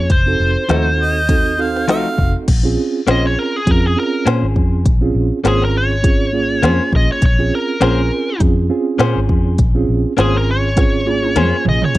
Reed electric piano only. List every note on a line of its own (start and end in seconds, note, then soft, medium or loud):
0.26 0.63 C4 medium
0.26 0.63 D#4 medium
0.26 0.63 F#4 medium
0.26 0.64 A4 medium
0.69 1.20 C4 medium
0.69 1.20 D#4 medium
0.69 1.21 F#4 medium
0.69 1.21 A4 medium
1.29 1.54 C4 medium
1.29 1.54 D#4 medium
1.29 1.54 F#4 medium
1.29 1.55 A4 medium
1.58 2.45 C4 medium
1.58 2.46 D#4 medium
1.58 2.46 F#4 medium
1.58 2.46 A4 medium
2.63 3.00 C4 medium
2.63 3.01 C#4 medium
2.63 3.01 F4 medium
2.63 3.01 G#4 loud
3.07 3.58 C4 medium
3.07 3.58 C#4 medium
3.07 3.58 F4 medium
3.07 3.59 G#4 medium
3.66 3.92 C4 medium
3.66 3.92 C#4 medium
3.66 3.92 F4 medium
3.66 3.92 G#4 medium
3.96 4.83 C4 medium
3.96 4.84 C#4 medium
3.96 4.84 F4 medium
3.96 4.84 G#4 medium
5.01 5.38 C4 medium
5.01 5.38 C#4 medium
5.01 5.38 F4 medium
5.01 5.38 G#4 medium
5.44 5.95 C4 medium
5.44 5.95 C#4 medium
5.44 5.95 F4 medium
5.44 5.95 G#4 medium
6.02 6.28 C4 medium
6.02 6.29 C#4 medium
6.02 6.29 F4 medium
6.02 6.29 G#4 medium
6.33 7.20 A#3 medium
6.33 7.20 C#4 medium
6.33 7.20 F4 medium
6.33 7.21 G#4 medium
7.39 7.75 C4 medium
7.39 7.75 C#4 medium
7.39 7.75 F4 medium
7.39 7.76 G#4 medium
7.81 8.32 C4 medium
7.81 8.32 C#4 medium
7.81 8.32 F4 medium
7.81 8.32 G#4 medium
8.40 8.66 C4 medium
8.40 8.66 C#4 medium
8.40 8.66 F4 medium
8.40 8.66 G#4 medium
8.69 9.57 C4 medium
8.69 9.57 C#4 medium
8.69 9.57 F4 medium
8.69 9.58 G#4 medium
9.75 10.12 C4 medium
9.75 10.12 C#4 medium
9.75 10.12 F4 medium
9.75 10.12 G#4 medium
10.17 10.68 C4 medium
10.17 10.69 C#4 medium
10.17 10.69 F4 medium
10.17 10.69 G#4 medium
10.76 11.02 C4 medium
10.76 11.02 C#4 medium
10.76 11.02 F4 medium
10.76 11.03 G#4 medium
11.05 11.93 A#3 medium
11.05 11.94 C#4 medium
11.05 11.94 F4 medium
11.05 11.94 G#4 medium